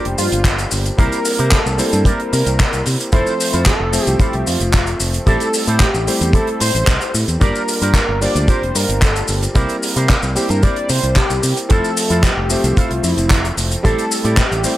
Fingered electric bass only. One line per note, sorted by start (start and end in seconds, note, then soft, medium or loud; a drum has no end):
0.05 0.14 F1 medium
0.19 0.27 G2 medium
0.32 0.64 G1 medium
0.72 0.89 G1 loud
0.99 1.07 C2 loud
1.39 1.56 C3 medium
1.66 1.79 C2 loud
1.79 muted fingered electric bass stroke soft
1.93 2.09 G2 loud
2.33 2.41 C3 loud
2.46 2.63 C2 loud
2.73 2.81 C2 medium
2.87 2.95 C3 medium
3.13 3.21 F1 loud
3.54 3.70 F2 medium
3.80 3.97 F1 loud
4.07 4.19 C2 loud
4.34 4.42 C2 medium
4.47 4.56 F2 medium
4.61 4.93 F1 medium
5.00 5.17 F1 loud
5.27 5.36 A1 loud
5.67 5.84 A2 medium
5.94 6.07 A1 loud
6.07 muted fingered electric bass stroke soft
6.21 6.38 E2 loud
6.61 6.70 A2 medium
6.75 6.87 A1 loud
6.88 6.96 C2 medium
7.14 7.23 A2 medium
7.28 7.36 E2 medium
7.41 7.50 G1 loud
7.82 7.98 G2 medium
8.09 8.25 G1 loud
8.35 8.47 D2 loud
8.62 8.70 F1 medium
8.75 8.84 G2 medium
8.89 9.21 G1 medium
9.29 9.46 G1 loud
9.55 9.64 C2 loud
9.96 10.13 C3 medium
10.23 10.36 C2 loud
10.36 muted fingered electric bass stroke soft
10.50 10.66 G2 loud
10.90 10.98 C3 loud
11.03 11.20 C2 loud
11.30 11.38 C2 medium
11.43 11.52 C3 medium
11.71 11.79 F1 medium
12.10 12.27 F2 medium
12.37 12.54 F1 loud
12.64 12.76 C2 loud
12.91 12.99 C2 medium
13.03 13.12 F2 medium
13.17 13.50 F1 medium
13.57 13.74 F1 loud
13.85 13.93 A1 medium
14.24 14.41 A2 medium
14.51 14.64 A1 loud
14.65 muted fingered electric bass stroke soft